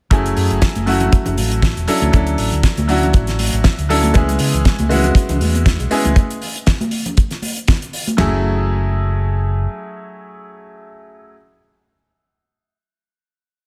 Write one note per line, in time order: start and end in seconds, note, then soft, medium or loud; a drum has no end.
0.10 0.32 F#1 medium
0.10 0.84 F#3 medium
0.10 0.84 A3 medium
0.10 0.84 C#4 medium
0.10 0.85 E4 medium
0.10 0.85 G#4 loud
0.10 kick loud
0.10 closed hi-hat medium
0.26 closed hi-hat soft
0.37 0.48 F#2 medium
0.37 open hi-hat medium
0.50 0.60 F#1 medium
0.50 closed hi-hat medium
0.62 kick loud
0.62 snare loud
0.62 closed hi-hat medium
0.75 1.09 F#1 medium
0.75 closed hi-hat soft
0.75 high conga medium
0.86 1.85 F#3 medium
0.86 1.85 A3 medium
0.86 1.85 C#4 medium
0.86 1.85 E4 medium
0.86 1.86 F#4 loud
0.86 open hi-hat medium
1.00 closed hi-hat medium
1.00 low conga medium
1.12 muted fingered electric bass stroke soft
1.12 kick loud
1.12 closed hi-hat medium
1.26 1.35 F#1 medium
1.26 closed hi-hat soft
1.26 low conga medium
1.37 1.72 A1 medium
1.37 open hi-hat loud
1.37 high conga medium
1.52 closed hi-hat medium
1.62 kick loud
1.62 snare loud
1.62 closed hi-hat medium
1.77 1.86 E1 medium
1.77 closed hi-hat soft
1.88 2.10 F#3 medium
1.88 2.10 C#4 medium
1.88 2.10 D4 medium
1.88 2.11 E4 medium
1.88 2.11 A4 loud
1.88 muted fingered electric bass stroke soft
1.88 open hi-hat loud
2.02 2.11 D2 medium
2.02 closed hi-hat medium
2.02 high conga medium
2.12 2.34 D2 medium
2.12 2.86 F#3 medium
2.12 2.86 C#4 medium
2.12 2.86 D4 medium
2.12 2.86 E4 medium
2.12 2.87 A4 loud
2.12 kick loud
2.12 closed hi-hat medium
2.27 closed hi-hat soft
2.38 2.50 A1 medium
2.38 open hi-hat medium
2.52 2.61 D2 medium
2.52 closed hi-hat medium
2.63 kick loud
2.63 snare loud
2.63 closed hi-hat medium
2.77 3.10 D2 medium
2.77 closed hi-hat soft
2.77 high conga medium
2.88 3.86 F#3 medium
2.88 3.87 C#4 medium
2.88 3.87 D4 medium
2.88 3.87 E4 medium
2.88 3.87 F#4 loud
2.88 open hi-hat loud
3.03 closed hi-hat medium
3.03 low conga medium
3.13 3.49 A1 medium
3.13 kick loud
3.13 closed hi-hat medium
3.27 snare soft
3.27 closed hi-hat soft
3.39 open hi-hat loud
3.39 high conga medium
3.53 3.62 A1 medium
3.53 closed hi-hat soft
3.64 kick loud
3.64 snare loud
3.64 closed hi-hat medium
3.78 4.11 D2 medium
3.78 closed hi-hat medium
3.89 4.12 F#3 medium
3.89 4.12 C#4 medium
3.89 4.12 D4 medium
3.89 4.12 E4 medium
3.89 4.12 A4 loud
3.89 open hi-hat loud
4.03 closed hi-hat soft
4.03 high conga medium
4.14 4.36 C#2 medium
4.14 4.26 E3 medium
4.14 4.87 G#3 medium
4.14 4.87 B3 medium
4.14 4.88 C#4 medium
4.14 4.88 E4 medium
4.14 4.88 G#4 loud
4.14 kick loud
4.14 closed hi-hat medium
4.29 4.33 G#3 medium
4.29 closed hi-hat medium
4.39 4.51 C#3 medium
4.39 4.45 B3 medium
4.39 open hi-hat loud
4.54 4.63 C#2 medium
4.54 4.60 E3 medium
4.54 closed hi-hat medium
4.65 4.77 G#3 medium
4.65 kick loud
4.65 snare loud
4.65 closed hi-hat medium
4.79 5.12 C#2 medium
4.79 4.83 B3 medium
4.79 closed hi-hat medium
4.79 high conga loud
4.89 5.02 E3 loud
4.89 5.88 G#3 medium
4.89 5.88 B3 medium
4.89 5.89 C#4 medium
4.89 5.89 E4 medium
4.89 5.89 F#4 loud
4.89 open hi-hat loud
5.04 5.11 G#3 medium
5.04 closed hi-hat medium
5.04 low conga medium
5.15 5.27 B3 loud
5.15 kick loud
5.15 closed hi-hat medium
5.29 5.39 C#2 medium
5.29 5.36 E3 medium
5.29 closed hi-hat medium
5.29 low conga loud
5.41 5.76 E2 medium
5.41 5.48 G#3 loud
5.41 open hi-hat loud
5.41 high conga medium
5.54 5.61 B3 medium
5.54 closed hi-hat medium
5.66 5.74 E3 medium
5.66 kick loud
5.66 snare loud
5.66 closed hi-hat medium
5.80 5.89 B1 medium
5.80 5.84 G#3 medium
5.80 closed hi-hat soft
5.91 6.14 G#3 medium
5.91 6.14 B3 medium
5.91 6.03 B3 loud
5.91 6.14 C#4 medium
5.91 6.14 E4 medium
5.91 6.14 G#4 loud
5.91 muted fingered electric bass stroke soft
5.91 open hi-hat loud
6.05 6.14 C#2 medium
6.05 6.14 E3 medium
6.05 closed hi-hat medium
6.05 high conga medium
6.16 kick loud
6.16 closed hi-hat medium
6.30 closed hi-hat soft
6.42 open hi-hat loud
6.56 closed hi-hat medium
6.66 kick loud
6.66 snare loud
6.66 closed hi-hat medium
6.81 closed hi-hat soft
6.81 high conga loud
6.91 open hi-hat loud
7.06 closed hi-hat medium
7.06 low conga medium
7.17 kick loud
7.17 closed hi-hat medium
7.31 snare soft
7.31 closed hi-hat soft
7.42 open hi-hat loud
7.42 high conga medium
7.57 closed hi-hat medium
7.68 kick loud
7.68 snare loud
7.68 closed hi-hat medium
7.82 closed hi-hat medium
7.93 open hi-hat loud
8.07 closed hi-hat medium
8.07 high conga medium
8.17 9.65 F#1 medium
8.17 8.42 E3 medium
8.17 11.32 F#3 medium
8.17 11.33 A3 medium
8.17 11.34 C#4 medium
8.17 11.35 E4 medium
8.17 11.35 G#4 medium
8.17 snare loud
8.17 floor tom loud
8.17 ride bell medium